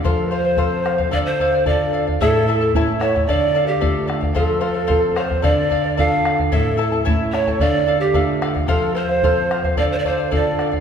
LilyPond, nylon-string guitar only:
\new Staff \with { instrumentName = "Nylon-string guitar" } { \time 2/4 \key d \minor \tempo 4 = 111 f4 <c' f' a'>4 | d4 <d' f' a'>4 | a,4 <a cis' e'>4 | d4 <a d' f'>4 |
f4 <c' f' a'>4 | d4 <d' f' a'>4 | a,4 <a cis' e'>4 | d4 <a d' f'>4 |
f4 <c' f' a'>4 | d4 <d' f' a'>4 | }